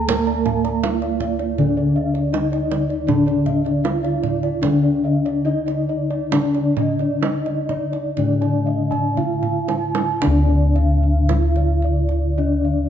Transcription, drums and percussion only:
0.09 kendang high, kendang low
0.27 kendang slap
0.46 kendang low
0.65 kendang slap
0.84 kendang high
1.02 kendang slap
1.20 kendang low
1.39 kendang slap
1.58 kendang low
2.15 kendang slap
2.34 kendang high
2.53 kendang slap
2.72 kendang high
2.90 kendang slap
3.08 kendang low
3.28 kendang slap
3.46 kendang low
3.66 kendang slap
3.85 kendang high
4.04 kendang slap
4.24 kendang low
4.43 kendang slap
4.63 kendang high, kendang low
5.26 kendang slap
5.68 kendang slap
6.11 kendang slap
6.32 kendang high, kendang low
6.54 kendang slap
6.77 kendang low
6.99 kendang slap
7.23 kendang high
7.46 kendang slap
7.69 kendang low
7.93 kendang slap
8.17 kendang low
8.42 kendang slap
8.92 kendang low
9.17 kendang low
9.43 kendang low
9.68 kendang high
9.95 kendang high
10.22 kendang high, kendang low
10.76 kendang slap
11.29 kendang slap, kendang high, kendang low
11.56 kendang slap
11.82 kendang slap
12.09 kendang slap

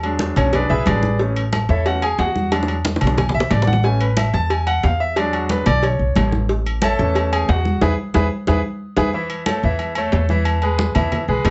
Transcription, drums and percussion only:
0.03 high conga, low agogo
0.19 cowbell, high conga, low timbale
0.36 cowbell, high conga, low conga, low agogo
0.53 cowbell, high conga, low conga, low agogo
0.69 high conga
0.86 cowbell, high conga, low timbale, low agogo
1.03 high conga
1.19 cowbell, high conga
1.36 high conga, low agogo
1.53 cowbell, high conga, low timbale, low agogo
1.69 cowbell, high conga
1.86 cowbell, high conga, low agogo
2.02 high conga, low agogo
2.19 cowbell, high conga, low timbale
2.36 high conga
2.52 cowbell, high bongo, high conga, low agogo
2.63 high bongo
2.68 high conga, low agogo
2.85 cowbell, high bongo, high conga, low timbale
2.96 high bongo
3.01 cowbell, high conga, low conga, low agogo
3.07 low bongo
3.18 cowbell, low bongo, high conga, low conga, low agogo
3.29 low bongo
3.34 high conga
3.40 low bongo
3.51 cowbell, low bongo, high conga, low timbale, low agogo
3.62 low bongo
3.67 high conga
3.73 low bongo
3.83 cowbell, high conga
4.00 high conga, low agogo
4.17 cowbell, high conga, low timbale, low agogo
4.34 cowbell, high conga
4.50 cowbell, high conga, low agogo
4.67 high conga, low agogo
4.83 cowbell, high conga, low timbale
5.16 cowbell, high conga, low agogo
5.33 high conga, low agogo
5.49 cowbell, high conga, low timbale
5.66 cowbell, high conga, low conga, low agogo
5.83 cowbell, high conga, low agogo
5.99 high conga
6.16 cowbell, high conga, low timbale, low agogo
6.32 high conga
6.49 cowbell, high conga
6.66 high conga, low agogo
6.82 cowbell, high conga, low timbale, low agogo
6.99 cowbell, high conga
7.15 cowbell, high conga, low agogo
7.32 high conga, low agogo
7.49 cowbell, high conga, low timbale
7.65 high conga
7.81 cowbell, high conga, high timbale
8.14 cowbell, high conga, high timbale
8.47 cowbell, high conga, high timbale
8.96 cowbell, high conga, high timbale
9.13 high conga
9.30 high conga, low agogo
9.46 high conga, low timbale, low agogo
9.63 high conga
9.79 high conga, low agogo
9.95 high conga, low agogo
10.12 high conga, low timbale
10.29 high conga
10.45 high conga, low agogo
10.62 high conga, low agogo
10.78 high conga, low timbale
10.95 high conga, low conga, low agogo
11.12 high conga, low conga, low agogo
11.28 high conga
11.45 high conga, low timbale, low agogo

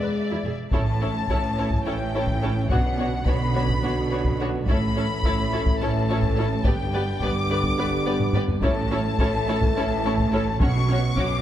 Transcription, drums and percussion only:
0.71 taiko
1.28 taiko
1.70 taiko
2.27 taiko
2.69 taiko
3.25 taiko
3.68 taiko
4.24 taiko
4.67 taiko
5.24 taiko
5.66 taiko
6.22 taiko
6.64 taiko
7.21 taiko
7.63 taiko
8.20 taiko low-mid
8.33 taiko low-mid
8.48 taiko low
8.62 taiko
9.19 taiko
9.61 taiko
10.18 taiko
10.60 taiko
11.17 taiko

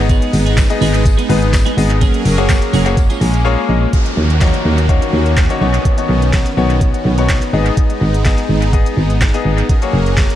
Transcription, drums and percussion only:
0.09 kick, closed hi-hat, tambourine
0.22 closed hi-hat
0.33 open hi-hat, tambourine
0.46 closed hi-hat
0.57 kick, snare, clap, closed hi-hat, tambourine
0.70 closed hi-hat
0.81 open hi-hat, tambourine
0.94 closed hi-hat, tambourine
1.05 kick, closed hi-hat, tambourine
1.18 closed hi-hat, tambourine
1.30 open hi-hat, tambourine
1.42 closed hi-hat, tambourine
1.53 kick, snare, clap, closed hi-hat, tambourine
1.66 closed hi-hat
1.78 open hi-hat, tambourine
1.90 closed hi-hat
2.01 kick, closed hi-hat, tambourine
2.14 closed hi-hat
2.25 open hi-hat, tambourine
2.38 closed hi-hat
2.49 kick, snare, clap, closed hi-hat, tambourine
2.62 closed hi-hat
2.73 open hi-hat, tambourine
2.86 closed hi-hat, tambourine
2.97 kick, closed hi-hat, tambourine
3.10 closed hi-hat, tambourine
3.21 open hi-hat, tambourine
3.34 closed hi-hat, tambourine
3.93 kick, closed hi-hat
4.06 closed hi-hat
4.30 closed hi-hat
4.41 kick, snare, clap, closed hi-hat
4.54 closed hi-hat
4.78 closed hi-hat
4.89 kick, closed hi-hat
5.02 closed hi-hat
5.26 closed hi-hat
5.37 kick, snare, clap, closed hi-hat
5.50 closed hi-hat
5.74 closed hi-hat
5.85 kick, closed hi-hat
5.98 closed hi-hat
6.22 closed hi-hat
6.33 kick, snare, clap, closed hi-hat
6.46 closed hi-hat
6.70 closed hi-hat
6.81 kick, closed hi-hat
6.94 closed hi-hat
7.18 closed hi-hat
7.29 kick, snare, clap, closed hi-hat
7.42 closed hi-hat
7.66 closed hi-hat
7.77 kick, closed hi-hat
7.90 closed hi-hat
8.14 closed hi-hat
8.25 kick, snare, clap, closed hi-hat
8.38 closed hi-hat
8.62 closed hi-hat
8.73 kick, closed hi-hat
8.86 closed hi-hat
9.10 closed hi-hat
9.21 kick, snare, clap, closed hi-hat
9.34 closed hi-hat
9.58 closed hi-hat
9.69 kick, closed hi-hat
9.82 closed hi-hat
10.06 closed hi-hat
10.17 kick, snare, clap, closed hi-hat
10.30 closed hi-hat

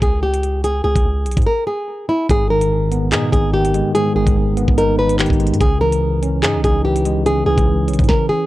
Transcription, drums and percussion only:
0.02 kick, closed hi-hat
0.34 closed hi-hat
0.43 closed hi-hat
0.64 closed hi-hat
0.96 kick, closed hi-hat
1.26 closed hi-hat
1.31 closed hi-hat
1.37 kick, closed hi-hat
1.42 closed hi-hat
2.29 kick, closed hi-hat
2.61 closed hi-hat
2.92 closed hi-hat
3.12 clap, closed hi-hat
3.33 kick, closed hi-hat
3.65 closed hi-hat
3.74 closed hi-hat
3.95 closed hi-hat
4.27 kick, closed hi-hat
4.57 closed hi-hat
4.68 kick
4.78 closed hi-hat
5.09 closed hi-hat
5.19 clap, closed hi-hat
5.26 closed hi-hat
5.30 kick, closed hi-hat
5.40 closed hi-hat
5.47 closed hi-hat
5.54 closed hi-hat
5.61 kick, closed hi-hat
5.92 closed hi-hat
6.23 closed hi-hat
6.43 clap, closed hi-hat
6.64 kick, closed hi-hat
6.96 closed hi-hat
7.05 closed hi-hat
7.26 closed hi-hat
7.58 kick, closed hi-hat
7.88 closed hi-hat
7.94 closed hi-hat
7.99 kick, closed hi-hat
8.04 closed hi-hat
8.09 kick, snare

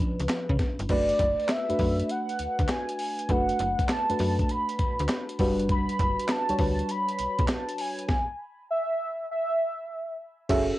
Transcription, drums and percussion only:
0.19 closed hi-hat
0.29 snare, clap, closed hi-hat
0.49 kick
0.59 kick, snare, closed hi-hat
0.79 closed hi-hat
0.89 kick, closed hi-hat, crash
1.09 closed hi-hat
1.19 kick, closed hi-hat
1.40 closed hi-hat
1.48 snare, clap, closed hi-hat
1.70 closed hi-hat
1.79 kick, open hi-hat
2.00 closed hi-hat
2.10 closed hi-hat
2.29 closed hi-hat
2.39 closed hi-hat
2.59 kick, closed hi-hat
2.69 snare, clap, closed hi-hat
2.89 closed hi-hat
2.99 open hi-hat
3.19 closed hi-hat
3.29 kick, closed hi-hat
3.49 closed hi-hat
3.59 closed hi-hat
3.79 kick, closed hi-hat
3.89 snare, clap, closed hi-hat
4.10 closed hi-hat
4.19 open hi-hat
4.39 kick, closed hi-hat
4.49 closed hi-hat
4.69 closed hi-hat
4.79 kick, closed hi-hat
4.99 closed hi-hat
5.08 snare, clap, closed hi-hat
5.29 closed hi-hat
5.39 kick, open hi-hat
5.59 closed hi-hat
5.69 kick, closed hi-hat
5.89 closed hi-hat
5.99 kick, closed hi-hat
6.19 closed hi-hat
6.28 snare, clap, closed hi-hat
6.49 closed hi-hat
6.59 kick, open hi-hat
6.79 closed hi-hat
6.89 closed hi-hat
7.09 closed hi-hat
7.19 closed hi-hat
7.39 kick, closed hi-hat
7.48 snare, clap, closed hi-hat
7.69 closed hi-hat
7.78 open hi-hat
7.99 closed hi-hat
8.09 kick, snare
10.49 kick, closed hi-hat, crash, tambourine

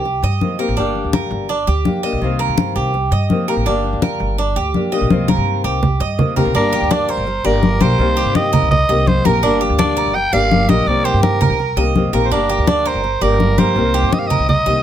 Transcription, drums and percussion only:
0.05 high conga
0.23 high conga
0.41 high conga
0.77 high conga
0.95 high conga
1.13 high conga
1.32 high conga
1.50 high conga
1.67 high conga
1.85 high conga
2.04 high conga
2.22 high conga
2.40 high conga
2.58 high conga
2.94 high conga
3.12 high conga
3.30 high conga
3.66 high conga
3.84 high conga
4.02 high conga
4.20 high conga
4.38 high conga
4.56 high conga
4.74 high conga
4.93 high conga
5.10 high conga
5.28 high conga
5.83 low conga
6.19 low conga
6.37 low conga
6.55 high conga
6.73 high conga
6.91 high conga
7.09 high conga
7.27 high conga
7.45 high conga
7.63 high conga
7.81 high conga
7.99 high conga
8.17 high conga
8.35 high conga
8.53 high conga, low conga
8.71 high conga, low conga
8.89 high conga
9.07 high conga
9.25 high conga
9.43 high conga
9.62 high conga
9.79 high conga
9.97 high conga
10.16 high conga
10.33 high conga
10.51 high conga
10.69 high conga
10.88 high conga
11.05 high conga
11.23 high conga
11.42 high conga, low conga
11.59 high conga
11.78 high conga
11.95 high conga
12.32 high conga
12.49 high conga
12.67 high conga
12.86 high conga
13.04 high conga
13.22 high conga
13.40 high conga
13.58 high conga
13.76 high conga
13.94 high conga
14.13 high conga
14.31 high conga, low conga
14.49 high conga, low conga
14.67 high conga

